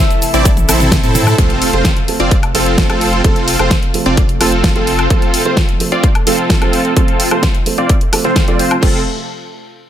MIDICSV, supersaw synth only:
0, 0, Header, 1, 2, 480
1, 0, Start_track
1, 0, Key_signature, -1, "major"
1, 0, Tempo, 465116
1, 1429, Time_signature, 4, 2, 24, 8
1, 10213, End_track
2, 0, Start_track
2, 0, Title_t, "Supersaw synth"
2, 0, Program_c, 0, 81
2, 349, Note_on_c, 0, 60, 96
2, 349, Note_on_c, 0, 64, 88
2, 349, Note_on_c, 0, 74, 107
2, 521, Note_off_c, 0, 60, 0
2, 521, Note_off_c, 0, 64, 0
2, 521, Note_off_c, 0, 74, 0
2, 709, Note_on_c, 0, 60, 77
2, 709, Note_on_c, 0, 64, 73
2, 709, Note_on_c, 0, 69, 87
2, 1040, Note_off_c, 0, 60, 0
2, 1040, Note_off_c, 0, 64, 0
2, 1040, Note_off_c, 0, 69, 0
2, 1069, Note_on_c, 0, 64, 85
2, 1070, Note_on_c, 0, 60, 92
2, 1070, Note_on_c, 0, 69, 103
2, 1400, Note_off_c, 0, 64, 0
2, 1401, Note_off_c, 0, 60, 0
2, 1401, Note_off_c, 0, 69, 0
2, 1429, Note_on_c, 0, 60, 83
2, 1761, Note_off_c, 0, 60, 0
2, 1789, Note_on_c, 0, 60, 75
2, 1789, Note_on_c, 0, 65, 68
2, 1789, Note_on_c, 0, 72, 85
2, 1961, Note_off_c, 0, 60, 0
2, 1961, Note_off_c, 0, 65, 0
2, 1961, Note_off_c, 0, 72, 0
2, 2269, Note_on_c, 0, 60, 91
2, 2269, Note_on_c, 0, 65, 83
2, 2269, Note_on_c, 0, 74, 103
2, 2441, Note_off_c, 0, 60, 0
2, 2441, Note_off_c, 0, 65, 0
2, 2441, Note_off_c, 0, 74, 0
2, 2629, Note_on_c, 0, 60, 80
2, 2630, Note_on_c, 0, 65, 72
2, 2630, Note_on_c, 0, 69, 81
2, 2961, Note_off_c, 0, 60, 0
2, 2961, Note_off_c, 0, 65, 0
2, 2961, Note_off_c, 0, 69, 0
2, 2989, Note_on_c, 0, 60, 90
2, 2989, Note_on_c, 0, 65, 82
2, 2989, Note_on_c, 0, 69, 101
2, 3320, Note_off_c, 0, 60, 0
2, 3321, Note_off_c, 0, 65, 0
2, 3321, Note_off_c, 0, 69, 0
2, 3349, Note_on_c, 0, 60, 87
2, 3349, Note_on_c, 0, 65, 78
2, 3349, Note_on_c, 0, 69, 96
2, 3680, Note_off_c, 0, 60, 0
2, 3680, Note_off_c, 0, 65, 0
2, 3681, Note_off_c, 0, 69, 0
2, 3710, Note_on_c, 0, 60, 78
2, 3710, Note_on_c, 0, 65, 70
2, 3710, Note_on_c, 0, 72, 80
2, 3881, Note_off_c, 0, 60, 0
2, 3881, Note_off_c, 0, 65, 0
2, 3881, Note_off_c, 0, 72, 0
2, 4189, Note_on_c, 0, 60, 94
2, 4190, Note_on_c, 0, 65, 86
2, 4190, Note_on_c, 0, 74, 105
2, 4361, Note_off_c, 0, 60, 0
2, 4361, Note_off_c, 0, 65, 0
2, 4361, Note_off_c, 0, 74, 0
2, 4550, Note_on_c, 0, 60, 77
2, 4550, Note_on_c, 0, 65, 70
2, 4550, Note_on_c, 0, 69, 85
2, 4881, Note_off_c, 0, 60, 0
2, 4881, Note_off_c, 0, 65, 0
2, 4881, Note_off_c, 0, 69, 0
2, 4910, Note_on_c, 0, 60, 92
2, 4910, Note_on_c, 0, 65, 83
2, 4910, Note_on_c, 0, 69, 99
2, 5241, Note_off_c, 0, 60, 0
2, 5241, Note_off_c, 0, 65, 0
2, 5241, Note_off_c, 0, 69, 0
2, 5269, Note_on_c, 0, 60, 86
2, 5269, Note_on_c, 0, 65, 76
2, 5269, Note_on_c, 0, 69, 93
2, 5600, Note_off_c, 0, 60, 0
2, 5600, Note_off_c, 0, 65, 0
2, 5600, Note_off_c, 0, 69, 0
2, 5629, Note_on_c, 0, 60, 73
2, 5629, Note_on_c, 0, 65, 69
2, 5630, Note_on_c, 0, 72, 85
2, 5801, Note_off_c, 0, 60, 0
2, 5801, Note_off_c, 0, 65, 0
2, 5801, Note_off_c, 0, 72, 0
2, 6109, Note_on_c, 0, 60, 91
2, 6109, Note_on_c, 0, 65, 86
2, 6109, Note_on_c, 0, 74, 102
2, 6281, Note_off_c, 0, 60, 0
2, 6281, Note_off_c, 0, 65, 0
2, 6281, Note_off_c, 0, 74, 0
2, 6469, Note_on_c, 0, 60, 76
2, 6469, Note_on_c, 0, 65, 68
2, 6469, Note_on_c, 0, 69, 85
2, 6800, Note_off_c, 0, 60, 0
2, 6800, Note_off_c, 0, 65, 0
2, 6800, Note_off_c, 0, 69, 0
2, 6829, Note_on_c, 0, 60, 95
2, 6829, Note_on_c, 0, 65, 83
2, 6830, Note_on_c, 0, 69, 102
2, 7161, Note_off_c, 0, 60, 0
2, 7161, Note_off_c, 0, 65, 0
2, 7161, Note_off_c, 0, 69, 0
2, 7189, Note_on_c, 0, 60, 89
2, 7189, Note_on_c, 0, 69, 95
2, 7190, Note_on_c, 0, 65, 79
2, 7520, Note_off_c, 0, 60, 0
2, 7520, Note_off_c, 0, 69, 0
2, 7521, Note_off_c, 0, 65, 0
2, 7550, Note_on_c, 0, 60, 74
2, 7550, Note_on_c, 0, 65, 66
2, 7550, Note_on_c, 0, 72, 84
2, 7721, Note_off_c, 0, 60, 0
2, 7721, Note_off_c, 0, 65, 0
2, 7721, Note_off_c, 0, 72, 0
2, 8030, Note_on_c, 0, 60, 94
2, 8030, Note_on_c, 0, 65, 86
2, 8030, Note_on_c, 0, 74, 100
2, 8201, Note_off_c, 0, 60, 0
2, 8201, Note_off_c, 0, 65, 0
2, 8201, Note_off_c, 0, 74, 0
2, 8510, Note_on_c, 0, 65, 77
2, 8510, Note_on_c, 0, 72, 94
2, 8511, Note_on_c, 0, 60, 87
2, 8721, Note_off_c, 0, 60, 0
2, 8721, Note_off_c, 0, 65, 0
2, 8721, Note_off_c, 0, 72, 0
2, 8750, Note_on_c, 0, 60, 82
2, 8750, Note_on_c, 0, 65, 76
2, 8750, Note_on_c, 0, 74, 92
2, 8852, Note_off_c, 0, 60, 0
2, 8852, Note_off_c, 0, 65, 0
2, 8852, Note_off_c, 0, 74, 0
2, 8870, Note_on_c, 0, 60, 95
2, 8870, Note_on_c, 0, 72, 101
2, 8871, Note_on_c, 0, 65, 89
2, 9042, Note_off_c, 0, 60, 0
2, 9042, Note_off_c, 0, 65, 0
2, 9042, Note_off_c, 0, 72, 0
2, 9110, Note_on_c, 0, 60, 86
2, 9110, Note_on_c, 0, 65, 78
2, 9110, Note_on_c, 0, 69, 99
2, 9288, Note_off_c, 0, 60, 0
2, 9288, Note_off_c, 0, 65, 0
2, 9288, Note_off_c, 0, 69, 0
2, 10213, End_track
0, 0, End_of_file